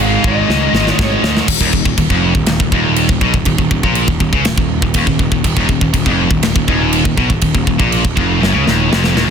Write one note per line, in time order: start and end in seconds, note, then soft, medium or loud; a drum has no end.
0.00 0.16 G#1 medium
0.00 0.72 G#2 loud
0.00 0.72 D#3 medium
0.00 0.72 G#3 loud
0.00 0.26 F5 medium
0.24 0.41 G#1 medium
0.24 1.48 G#2 medium
0.24 1.47 D#3 medium
0.24 1.46 G#3 medium
0.24 0.93 D#5 medium
0.24 kick medium
0.49 0.66 C#2 medium
0.49 snare medium
0.73 0.91 G#1 medium
0.73 0.97 G#2 medium
0.73 0.98 D#3 medium
0.73 0.97 G#3 medium
0.73 snare medium
0.87 snare medium
0.93 1.21 C#5 medium
0.98 1.16 G#1 loud
0.98 1.46 G#2 medium
0.98 1.47 D#3 medium
0.98 1.48 G#3 medium
0.98 kick medium
0.98 snare loud
1.23 1.40 D2 medium
1.23 snare loud
1.37 snare loud
1.48 1.60 D#1 medium
1.48 1.60 D#2 medium
1.48 kick medium
1.48 crash loud
1.48 crash medium
1.60 1.72 D#1 loud
1.60 1.72 D#2 loud
1.60 kick medium
1.73 1.84 D#1 medium
1.73 1.84 D#2 medium
1.73 kick medium
1.85 1.97 D#1 medium
1.85 1.97 D#2 medium
1.85 kick medium
1.97 2.09 D#1 medium
1.97 2.11 D#2 medium
1.97 kick medium
1.97 crash medium
2.10 2.33 F1 loud
2.10 2.35 F2 loud
2.10 kick medium
2.35 2.46 D#1 medium
2.35 2.47 D#2 medium
2.35 kick medium
2.46 2.59 D#1 medium
2.46 2.59 D#2 medium
2.46 snare loud
2.46 crash medium
2.60 2.71 D#1 medium
2.60 2.72 D#2 medium
2.60 kick medium
2.72 3.06 D#1 loud
2.72 3.09 D#2 loud
2.72 kick medium
2.96 crash medium
3.09 3.20 D#1 medium
3.09 3.22 D#2 medium
3.09 kick medium
3.21 3.33 B1 loud
3.21 3.33 B2 loud
3.21 kick medium
3.33 3.45 D#1 medium
3.33 3.45 D#2 medium
3.33 kick medium
3.45 3.57 D#1 medium
3.45 3.58 D#2 medium
3.45 kick loud
3.45 crash medium
3.58 3.70 D#1 medium
3.58 3.70 D#2 medium
3.58 kick medium
3.71 3.82 D#1 medium
3.71 3.84 D#2 medium
3.71 kick medium
3.83 4.06 A#1 loud
3.83 4.08 A#2 loud
3.83 kick medium
3.95 crash medium
4.08 4.20 D#1 medium
4.08 4.19 D#2 medium
4.08 kick loud
4.20 4.32 D#1 medium
4.20 4.33 D#2 medium
4.20 kick medium
4.33 4.43 C#2 loud
4.33 4.45 C#3 medium
4.33 kick medium
4.43 4.56 D#1 medium
4.43 4.57 D#2 medium
4.43 snare loud
4.43 crash medium
4.57 4.81 D#1 medium
4.57 4.78 D#2 medium
4.57 kick medium
4.82 4.94 D#1 medium
4.82 4.94 D#2 medium
4.82 kick loud
4.94 5.06 D#1 loud
4.94 5.07 D#2 loud
4.94 kick loud
4.94 crash medium
5.06 5.18 D#1 medium
5.06 5.19 D#2 medium
5.06 kick medium
5.19 5.31 D#1 medium
5.19 5.31 D#2 medium
5.19 kick medium
5.31 5.43 D#1 medium
5.31 5.43 D#2 medium
5.31 kick medium
5.44 5.56 D#1 medium
5.44 5.55 D#2 medium
5.44 kick medium
5.44 crash medium
5.56 5.68 D#1 loud
5.56 5.68 D#2 loud
5.56 kick medium
5.69 5.80 D#1 medium
5.69 5.81 D#2 medium
5.69 kick medium
5.81 5.93 D#1 medium
5.81 5.92 D#2 medium
5.81 kick medium
5.93 6.05 D#1 medium
5.93 6.06 D#2 medium
5.93 kick medium
5.93 crash medium
6.06 6.29 F1 loud
6.06 6.30 F2 loud
6.06 kick medium
6.30 6.42 D#1 medium
6.30 6.41 D#2 medium
6.30 kick medium
6.42 6.55 D#1 medium
6.42 6.54 D#2 medium
6.42 snare loud
6.42 crash medium
6.55 6.67 D#1 medium
6.55 6.66 D#2 medium
6.55 kick loud
6.68 7.03 D#1 loud
6.68 7.04 D#2 loud
6.68 kick medium
6.93 crash medium
7.05 7.16 D#1 medium
7.05 7.18 D#2 medium
7.05 kick medium
7.17 7.29 B1 loud
7.17 7.29 B2 loud
7.17 kick medium
7.30 7.41 D#1 medium
7.30 7.41 D#2 medium
7.30 kick medium
7.41 7.54 D#1 medium
7.41 7.53 D#2 medium
7.41 kick medium
7.41 crash medium
7.54 7.66 D#1 medium
7.54 7.66 D#2 medium
7.54 kick medium
7.67 7.79 D#1 medium
7.67 7.80 D#2 medium
7.67 kick medium
7.79 8.03 A#1 loud
7.79 8.03 A#2 medium
7.79 kick medium
7.92 crash medium
8.03 8.16 D#1 medium
8.03 8.15 D#2 medium
8.03 kick medium
8.16 8.40 F1 medium
8.16 8.40 F2 loud
8.16 kick medium
8.40 8.53 F#1 loud
8.40 8.53 F#2 loud
8.40 snare medium
8.53 8.66 C#2 medium
8.53 8.65 C#3 loud
8.66 8.90 D#1 loud
8.66 8.90 D#2 loud
8.66 snare medium
8.90 9.14 F1 loud
8.90 9.15 F2 loud
8.90 snare loud
9.04 snare medium
9.15 9.27 D#1 loud
9.15 9.27 D#2 loud
9.15 snare loud